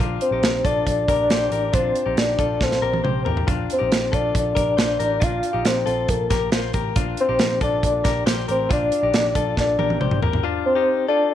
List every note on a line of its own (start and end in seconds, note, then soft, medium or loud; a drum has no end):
0.00 0.18 A#1 medium
0.00 0.31 D4 medium
0.00 0.30 F4 loud
0.21 0.67 C5 medium
0.21 closed hi-hat medium
0.31 0.40 A#1 medium
0.31 0.63 D#4 medium
0.31 0.63 G4 medium
0.42 0.61 A#1 medium
0.42 snare medium
0.42 closed hi-hat medium
0.64 0.83 A#1 medium
0.64 1.06 F4 medium
0.64 1.06 A4 medium
0.64 0.85 D5 medium
0.64 kick medium
0.64 closed hi-hat medium
0.86 1.04 A#1 medium
0.86 kick medium
0.86 closed hi-hat medium
1.08 1.26 A#1 medium
1.08 1.30 G4 medium
1.08 1.30 A#4 medium
1.08 kick medium
1.08 closed hi-hat medium
1.30 1.48 A#1 medium
1.30 1.52 G4 medium
1.30 1.52 C5 medium
1.30 snare medium
1.30 closed hi-hat medium
1.51 1.69 A1 medium
1.51 1.72 G4 medium
1.51 1.74 A#4 medium
1.51 closed hi-hat medium
1.73 1.92 A#1 medium
1.73 2.05 D4 medium
1.73 2.04 F4 medium
1.73 2.19 C5 loud
1.73 kick loud
1.73 closed hi-hat medium
1.95 closed hi-hat medium
2.06 2.15 A#1 medium
2.06 2.37 D#4 medium
2.06 2.37 G4 medium
2.17 2.35 A#1 medium
2.17 2.64 D5 medium
2.17 snare medium
2.17 closed hi-hat medium
2.39 2.57 A#1 medium
2.39 2.80 F4 soft
2.39 2.80 A4 medium
2.39 kick medium
2.39 closed hi-hat medium
2.61 2.79 A#1 medium
2.61 3.27 C5 medium
2.61 kick medium
2.61 snare soft
2.72 snare soft
2.82 3.00 A#1 medium
2.82 3.03 G4 medium
2.82 3.03 A#4 medium
2.93 high tom medium
3.04 3.22 A#1 medium
3.04 3.25 G4 soft
3.04 3.25 C5 medium
3.04 mid tom medium
3.25 3.44 A1 medium
3.25 3.47 G4 medium
3.25 3.47 A#4 medium
3.25 floor tom medium
3.37 floor tom medium
3.47 3.66 A#1 medium
3.47 3.79 D4 medium
3.47 3.78 F4 medium
3.47 kick loud
3.47 closed hi-hat medium
3.70 4.16 C5 medium
3.70 closed hi-hat medium
3.79 3.90 A#1 medium
3.79 4.11 D#4 medium
3.79 4.10 G4 medium
3.92 4.09 A#1 medium
3.92 snare medium
3.92 closed hi-hat medium
4.12 4.31 A#1 medium
4.12 4.54 F4 medium
4.12 4.53 A4 medium
4.12 4.36 D5 medium
4.12 kick medium
4.12 closed hi-hat medium
4.35 4.53 A#1 medium
4.35 5.25 D5 medium
4.35 kick medium
4.35 closed hi-hat medium
4.55 4.74 A#1 medium
4.55 4.78 G4 medium
4.55 4.77 A#4 medium
4.55 kick medium
4.55 closed hi-hat medium
4.77 4.96 A#1 medium
4.77 5.00 F4 medium
4.77 4.99 C5 medium
4.77 snare medium
4.77 closed hi-hat medium
4.99 5.18 A1 medium
4.99 5.20 G4 medium
4.99 5.22 A#4 medium
4.99 closed hi-hat medium
5.20 5.40 A#1 medium
5.20 5.52 D4 medium
5.20 5.52 F4 medium
5.20 5.68 F5 loud
5.20 kick loud
5.20 closed hi-hat medium
5.43 closed hi-hat medium
5.53 5.63 A#1 medium
5.53 5.85 D#4 soft
5.53 5.85 G4 medium
5.65 5.83 A#1 loud
5.65 6.11 C5 medium
5.65 snare medium
5.65 closed hi-hat medium
5.86 6.05 A#1 loud
5.86 6.28 F4 medium
5.86 6.28 A4 medium
5.86 closed hi-hat medium
6.08 6.27 A#1 medium
6.08 6.75 A#4 medium
6.08 kick medium
6.08 closed hi-hat medium
6.30 6.49 A#1 loud
6.30 6.52 G4 medium
6.30 6.52 A#4 medium
6.30 kick medium
6.30 snare soft
6.30 closed hi-hat medium
6.52 6.71 A#1 medium
6.52 6.75 F4 medium
6.52 6.74 C5 medium
6.52 snare medium
6.52 closed hi-hat medium
6.74 6.92 A1 medium
6.74 6.95 G4 medium
6.74 6.96 A#4 medium
6.74 kick medium
6.74 closed hi-hat medium
6.96 7.14 A#1 loud
6.96 7.27 D4 medium
6.96 7.27 F4 medium
6.96 kick loud
6.96 closed hi-hat medium
7.17 7.60 C5 loud
7.17 closed hi-hat medium
7.29 7.38 A#1 medium
7.29 7.60 D#4 medium
7.29 7.60 G4 medium
7.39 7.58 A#1 medium
7.39 snare loud
7.39 closed hi-hat medium
7.61 7.79 A#1 medium
7.61 8.03 F4 soft
7.61 8.02 A4 medium
7.61 7.83 D5 medium
7.61 kick medium
7.61 closed hi-hat medium
7.83 8.01 A#1 medium
7.83 8.24 D5 loud
7.83 kick medium
7.83 closed hi-hat medium
8.04 8.23 A#1 medium
8.04 8.26 G4 medium
8.04 8.26 A#4 medium
8.04 kick medium
8.04 snare soft
8.04 closed hi-hat medium
8.26 8.45 A#1 medium
8.26 8.48 G4 medium
8.26 8.48 C5 medium
8.26 snare medium
8.26 closed hi-hat medium
8.48 8.67 A1 medium
8.48 8.69 G4 medium
8.48 8.70 A#4 medium
8.48 8.70 C5 medium
8.48 closed hi-hat medium
8.69 8.88 A#1 medium
8.69 9.01 D4 medium
8.69 9.01 F4 medium
8.69 9.55 D5 loud
8.69 kick loud
8.69 closed hi-hat medium
8.92 closed hi-hat medium
9.03 9.12 A#1 medium
9.03 9.34 D#4 soft
9.03 9.34 G4 medium
9.14 9.32 A#1 medium
9.14 snare loud
9.14 closed hi-hat medium
9.35 9.53 A#1 medium
9.35 9.77 F4 soft
9.35 9.76 A4 medium
9.35 kick medium
9.35 closed hi-hat medium
9.57 9.75 A#1 medium
9.57 10.20 D5 medium
9.57 kick medium
9.57 snare soft
9.79 9.97 A#1 medium
9.79 10.00 G4 medium
9.79 10.00 A#4 medium
9.79 high tom medium
9.90 high tom medium
10.00 10.18 A#1 medium
10.00 10.22 G4 medium
10.00 10.22 C5 medium
10.00 mid tom medium
10.11 mid tom medium
10.22 10.40 A1 medium
10.22 10.43 G4 medium
10.22 10.44 A#4 medium
10.22 floor tom medium
10.33 floor tom medium
10.43 10.75 D4 medium
10.43 10.74 F4 loud
10.65 11.06 C5 loud
10.75 11.07 D#4 medium
10.75 11.06 G4 medium
11.08 11.34 F4 medium
11.08 11.34 A4 medium
11.08 11.29 D5 medium
11.29 11.34 D5 loud